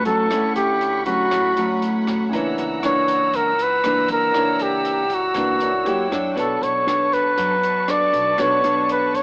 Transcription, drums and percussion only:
0.05 kick soft
0.05 closed hi-hat soft
0.31 kick medium
0.31 cross-stick soft
0.31 closed hi-hat medium
0.56 closed hi-hat soft
0.81 closed hi-hat soft
1.06 kick soft
1.06 closed hi-hat soft
1.31 kick soft
1.31 cross-stick medium
1.31 closed hi-hat soft
1.57 closed hi-hat soft
1.82 closed hi-hat soft
2.07 kick medium
2.07 cross-stick medium
2.07 closed hi-hat soft
2.33 kick medium
2.33 closed hi-hat soft
2.58 closed hi-hat soft
2.83 cross-stick medium
2.83 closed hi-hat soft
3.08 kick soft
3.08 closed hi-hat soft
3.33 kick medium
3.33 closed hi-hat medium
3.59 closed hi-hat soft
3.84 cross-stick medium
3.84 closed hi-hat soft
4.08 kick medium
4.08 closed hi-hat soft
4.34 kick medium
4.34 cross-stick soft
4.34 closed hi-hat soft
4.59 closed hi-hat soft
4.85 closed hi-hat soft
5.10 kick medium
5.10 closed hi-hat soft
5.34 kick soft
5.34 cross-stick medium
5.34 closed hi-hat medium
5.60 closed hi-hat soft
5.86 closed hi-hat soft
6.11 kick soft
6.11 cross-stick medium
6.11 closed hi-hat soft
6.37 kick medium
6.37 closed hi-hat soft
6.63 closed hi-hat soft
6.88 cross-stick medium
6.88 closed hi-hat soft
7.12 kick soft
7.12 closed hi-hat soft
7.38 kick soft
7.38 closed hi-hat medium
7.63 closed hi-hat soft
7.88 cross-stick medium
7.88 closed hi-hat soft
8.13 kick soft
8.13 closed hi-hat soft
8.38 kick medium
8.38 cross-stick medium
8.38 closed hi-hat medium
8.64 closed hi-hat soft
8.89 closed hi-hat soft
9.14 kick soft
9.14 closed hi-hat soft

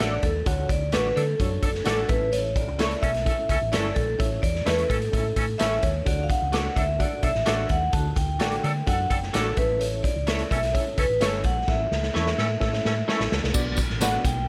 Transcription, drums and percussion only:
0.00 snare loud
0.23 kick medium
0.23 closed hi-hat medium
0.46 kick loud
0.46 closed hi-hat medium
0.69 kick medium
0.69 closed hi-hat medium
0.92 snare loud
0.92 closed hi-hat medium
1.17 closed hi-hat medium
1.40 kick medium
1.40 closed hi-hat medium
1.63 kick medium
1.63 closed hi-hat medium
1.75 snare soft
1.85 snare loud
1.85 closed hi-hat medium
2.09 kick medium
2.09 closed hi-hat medium
2.33 closed hi-hat medium
2.56 kick medium
2.56 closed hi-hat medium
2.79 snare loud
2.79 closed hi-hat medium
2.91 closed hi-hat soft
3.03 kick medium
3.03 closed hi-hat medium
3.14 snare soft
3.14 closed hi-hat soft
3.26 kick medium
3.26 closed hi-hat medium
3.49 kick medium
3.49 closed hi-hat medium
3.73 snare loud
3.73 closed hi-hat medium
3.96 kick medium
3.96 closed hi-hat medium
4.20 kick loud
4.20 closed hi-hat medium
4.43 kick medium
4.43 closed hi-hat medium
4.56 snare soft
4.66 snare loud
4.66 closed hi-hat medium
4.78 closed hi-hat soft
4.90 kick medium
4.90 closed hi-hat medium
5.02 closed hi-hat soft
5.13 kick medium
5.13 closed hi-hat medium
5.36 kick medium
5.36 closed hi-hat medium
5.59 snare loud
5.59 closed hi-hat medium
5.83 kick medium
5.83 closed hi-hat medium
6.06 kick loud
6.06 closed hi-hat medium
6.30 kick medium
6.30 closed hi-hat medium
6.53 snare loud
6.53 closed hi-hat medium
6.76 kick medium
6.76 closed hi-hat medium
7.00 kick medium
7.00 closed hi-hat medium
7.23 kick medium
7.23 closed hi-hat medium
7.35 snare soft
7.46 snare loud
7.46 closed hi-hat medium
7.69 kick medium
7.69 closed hi-hat medium
7.93 kick loud
7.93 closed hi-hat medium
8.16 kick medium
8.16 closed hi-hat medium
8.40 snare loud
8.40 closed hi-hat medium
8.52 closed hi-hat soft
8.64 closed hi-hat medium
8.87 kick medium
8.87 closed hi-hat medium
9.11 kick medium
9.11 closed hi-hat medium
9.23 snare soft
9.34 snare loud
9.34 closed hi-hat medium
9.57 kick medium
9.57 closed hi-hat medium
9.81 closed hi-hat medium
10.04 kick medium
10.04 closed hi-hat medium
10.27 snare loud
10.27 closed hi-hat medium
10.39 closed hi-hat soft
10.51 kick medium
10.51 closed hi-hat medium
10.63 snare soft
10.63 closed hi-hat soft
10.75 kick medium
10.75 closed hi-hat medium
10.98 kick medium
10.98 closed hi-hat medium
11.21 snare loud
11.21 closed hi-hat medium
11.44 kick medium
11.44 closed hi-hat medium
11.68 kick loud
11.68 snare soft
11.92 snare medium
12.03 snare soft
12.15 snare medium
12.27 snare medium
12.38 snare medium
12.61 kick medium
12.61 snare medium
12.73 snare medium
12.85 snare medium
13.09 snare medium
13.20 snare medium
13.32 snare medium
13.44 snare medium
13.54 kick loud
13.54 crash medium
13.54 tambourine medium
13.77 kick medium
13.77 closed hi-hat medium
13.77 tambourine medium
13.90 snare soft
14.01 snare loud
14.01 closed hi-hat medium
14.01 tambourine medium
14.25 kick medium
14.25 closed hi-hat medium
14.25 tambourine medium

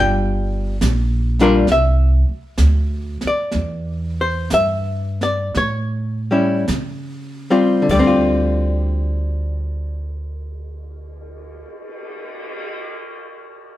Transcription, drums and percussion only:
0.81 snare medium
0.81 hi-hat pedal medium
1.39 snare soft
1.67 brush sweep soft
1.67 snare soft
2.58 snare medium
2.58 hi-hat pedal soft
3.21 snare soft
3.52 brush sweep soft
3.52 snare soft
4.50 snare medium
4.50 hi-hat pedal medium
5.21 snare soft
5.54 brush sweep soft
5.54 snare soft
6.68 snare medium
6.68 hi-hat pedal soft
7.89 kick medium
7.89 crash medium
8.74 cymbal swell soft

